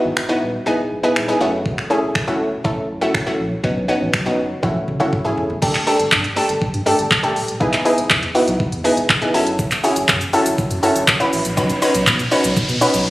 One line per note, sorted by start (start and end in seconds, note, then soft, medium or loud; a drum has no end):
0.00 0.23 B3 medium
0.00 0.23 D#4 medium
0.00 0.23 E4 medium
0.00 0.23 F#4 loud
0.04 0.12 G#1 medium
0.17 0.32 E1 medium
0.17 finger snap loud
0.29 0.60 B3 medium
0.29 0.60 D#4 medium
0.29 0.60 E4 medium
0.29 0.60 F#4 medium
0.42 0.57 D#1 medium
0.66 0.81 E1 loud
0.66 0.97 B3 medium
0.66 0.97 D#4 medium
0.66 0.98 E4 medium
0.66 0.98 G#4 medium
0.91 1.06 E1 medium
1.03 1.24 B3 medium
1.03 1.24 D#4 medium
1.03 1.24 E4 medium
1.03 1.24 G#4 medium
1.16 1.31 D#1 medium
1.16 finger snap loud
1.28 1.41 B3 medium
1.28 1.41 D#4 medium
1.28 1.40 E4 medium
1.28 1.41 G#4 loud
1.41 1.78 F#1 loud
1.41 1.82 A3 medium
1.41 1.82 C#4 medium
1.41 1.82 E4 medium
1.41 1.82 F#4 loud
1.66 kick loud
1.78 finger snap medium
1.90 2.21 A3 medium
1.90 2.21 C#4 medium
1.90 2.21 E4 medium
1.90 2.22 G#4 medium
2.03 2.10 E1 medium
2.15 2.30 F#1 medium
2.15 finger snap loud
2.15 kick loud
2.27 2.59 A3 medium
2.27 2.59 C#4 medium
2.27 2.59 E4 medium
2.27 2.59 F#4 loud
2.40 2.55 E1 medium
2.64 2.80 E1 medium
2.64 2.96 A3 medium
2.64 2.96 C#4 medium
2.64 2.96 E4 medium
2.64 2.96 A4 medium
2.64 kick loud
2.90 3.04 F#1 medium
3.01 3.22 A3 medium
3.01 3.23 C#4 medium
3.01 3.23 E4 medium
3.01 3.23 F#4 medium
3.14 3.29 F#1 loud
3.14 finger snap loud
3.14 kick loud
3.26 3.58 A3 medium
3.26 3.58 C#4 medium
3.26 3.58 E4 medium
3.26 3.58 F#4 loud
3.39 3.54 A#1 loud
3.64 3.86 B1 medium
3.64 3.84 B3 medium
3.64 3.85 C#4 medium
3.64 3.85 D#4 medium
3.64 3.85 F#4 medium
3.64 kick loud
3.88 4.20 B3 medium
3.88 4.20 C#4 medium
3.88 4.20 D#4 medium
3.88 4.20 F#4 loud
4.01 4.09 A1 medium
4.14 4.29 B1 medium
4.14 finger snap loud
4.14 kick loud
4.26 4.57 B3 medium
4.26 4.57 C#4 medium
4.26 4.57 D#4 medium
4.26 4.57 F#4 loud
4.38 4.53 F#1 medium
4.63 4.71 F#1 loud
4.63 4.94 A3 medium
4.63 4.94 C#4 medium
4.63 4.94 E4 medium
4.63 4.94 F#4 medium
4.63 kick loud
4.63 high tom medium
4.75 4.83 A1 medium
4.88 4.95 A1 medium
4.88 mid tom medium
5.00 5.08 F#1 medium
5.00 5.21 A3 medium
5.00 5.21 C#4 medium
5.00 5.21 E4 medium
5.00 5.21 F#4 medium
5.00 mid tom medium
5.13 kick loud
5.13 mid tom medium
5.25 5.32 A1 medium
5.25 5.56 A3 medium
5.25 5.56 C#4 medium
5.25 5.56 E4 medium
5.25 5.56 G#4 medium
5.37 5.45 F1 medium
5.37 floor tom medium
5.50 5.57 F#1 medium
5.50 floor tom medium
5.62 5.77 G1 loud
5.62 5.83 A3 medium
5.62 5.83 D4 medium
5.62 5.83 G4 medium
5.62 5.83 A4 loud
5.62 kick loud
5.62 crash loud
5.75 clap medium
5.75 closed hi-hat medium
5.87 6.28 A3 medium
5.87 6.28 D4 medium
5.87 6.28 G4 medium
5.87 6.29 A4 medium
5.87 open hi-hat medium
5.99 6.07 G1 medium
5.99 closed hi-hat medium
6.12 6.27 G2 medium
6.12 kick loud
6.12 clap loud
6.24 closed hi-hat medium
6.36 6.78 A3 medium
6.36 6.78 D4 medium
6.36 6.78 G4 medium
6.36 6.78 A4 loud
6.36 open hi-hat medium
6.49 6.56 G1 medium
6.49 closed hi-hat medium
6.62 6.67 G2 soft
6.62 kick loud
6.74 6.81 G2 loud
6.74 closed hi-hat medium
6.86 7.17 A3 medium
6.86 7.17 D4 medium
6.86 7.17 G4 medium
6.86 7.17 A4 loud
6.86 open hi-hat medium
6.99 7.06 G1 loud
6.99 closed hi-hat medium
7.11 kick loud
7.11 clap loud
7.23 7.31 G1 medium
7.23 7.54 A3 medium
7.23 7.54 D4 medium
7.23 7.54 G4 medium
7.23 7.55 A4 loud
7.23 closed hi-hat soft
7.36 7.43 D1 medium
7.36 open hi-hat medium
7.48 7.56 D#1 loud
7.48 closed hi-hat medium
7.60 7.76 E1 loud
7.60 7.81 B3 medium
7.60 7.81 D#4 medium
7.60 7.81 E4 medium
7.60 7.81 G#4 medium
7.60 kick loud
7.73 clap medium
7.73 closed hi-hat medium
7.85 8.27 B3 medium
7.85 8.27 D#4 medium
7.85 8.27 E4 medium
7.85 8.27 G#4 medium
7.85 open hi-hat medium
7.98 8.05 E1 medium
7.98 closed hi-hat medium
8.10 8.25 E2 loud
8.10 kick loud
8.10 clap loud
8.23 closed hi-hat medium
8.35 8.76 B3 medium
8.35 8.76 D#4 medium
8.35 8.76 E4 medium
8.35 8.77 F#4 loud
8.35 open hi-hat medium
8.47 8.55 B1 medium
8.47 closed hi-hat medium
8.60 8.65 E2 soft
8.60 kick loud
8.72 8.80 E2 medium
8.72 closed hi-hat medium
8.84 9.16 B3 medium
8.84 9.16 D#4 medium
8.84 9.16 E4 medium
8.84 9.16 G#4 loud
8.84 open hi-hat medium
8.97 9.05 E1 loud
8.97 closed hi-hat medium
9.09 9.24 E1 loud
9.09 kick loud
9.09 clap loud
9.22 9.34 B3 medium
9.22 9.34 D#4 medium
9.22 9.33 E4 medium
9.22 9.34 G#4 medium
9.22 closed hi-hat medium
9.34 9.64 F#1 loud
9.34 9.76 C#4 medium
9.34 9.76 E4 medium
9.34 9.76 F#4 medium
9.34 9.76 A4 loud
9.34 open hi-hat medium
9.47 closed hi-hat medium
9.59 kick loud
9.59 riser medium
9.59 shaker medium
9.71 clap medium
9.71 closed hi-hat medium
9.71 shaker medium
9.84 10.25 C#4 medium
9.84 10.25 E4 medium
9.84 10.25 F#4 medium
9.84 10.25 G#4 loud
9.84 open hi-hat medium
9.84 shaker medium
9.96 10.04 F#1 medium
9.96 closed hi-hat medium
9.96 shaker medium
10.09 10.24 F#2 loud
10.09 kick loud
10.09 clap loud
10.09 shaker medium
10.21 closed hi-hat medium
10.21 shaker medium
10.33 10.75 C#4 loud
10.33 10.75 E4 medium
10.33 10.75 F#4 medium
10.33 10.75 A4 loud
10.33 open hi-hat medium
10.33 shaker medium
10.46 10.53 F#1 loud
10.46 closed hi-hat medium
10.46 shaker medium
10.58 10.63 F#2 soft
10.58 kick loud
10.58 shaker medium
10.70 10.78 F#2 loud
10.70 closed hi-hat medium
10.70 shaker medium
10.83 11.14 C#4 medium
10.83 11.14 E4 medium
10.83 11.14 F#4 medium
10.83 11.14 A4 loud
10.83 open hi-hat medium
10.83 shaker medium
10.95 11.03 F#1 medium
10.95 closed hi-hat medium
10.95 shaker medium
11.08 kick loud
11.08 clap loud
11.08 shaker medium
11.20 11.28 F#1 medium
11.20 11.51 C#4 medium
11.20 11.51 E4 medium
11.20 11.51 F#4 medium
11.20 11.51 B4 loud
11.20 closed hi-hat medium
11.20 shaker medium
11.33 11.40 A1 medium
11.33 open hi-hat medium
11.33 shaker medium
11.45 11.52 A#1 medium
11.45 closed hi-hat medium
11.45 shaker medium
11.57 11.72 B1 loud
11.57 11.78 C#4 medium
11.57 11.78 D#4 medium
11.57 11.78 F#4 medium
11.57 11.78 B4 loud
11.57 kick loud
11.57 shaker medium
11.70 closed hi-hat medium
11.70 shaker medium
11.82 12.23 C#4 medium
11.82 12.23 D#4 medium
11.82 12.24 F#4 medium
11.82 12.24 B4 loud
11.82 open hi-hat medium
11.82 shaker medium
11.95 12.02 B1 loud
11.95 closed hi-hat medium
11.95 shaker medium
12.07 12.22 B2 loud
12.07 kick loud
12.07 clap loud
12.07 shaker medium
12.19 closed hi-hat medium
12.19 shaker medium
12.31 12.73 C#4 medium
12.31 12.73 D#4 medium
12.31 12.73 F#4 medium
12.31 12.73 B4 loud
12.31 open hi-hat medium
12.31 shaker medium
12.44 12.52 B1 loud
12.44 closed hi-hat medium
12.44 shaker medium
12.57 12.62 B2 medium
12.57 kick loud
12.57 shaker medium
12.69 12.76 B2 loud
12.69 closed hi-hat medium
12.69 shaker medium
12.81 13.10 C#4 medium
12.81 13.10 D#4 medium
12.81 13.10 F#4 medium
12.81 13.10 B4 loud
12.81 open hi-hat medium
12.81 shaker medium
12.94 13.01 B1 medium
12.94 closed hi-hat medium
12.94 shaker medium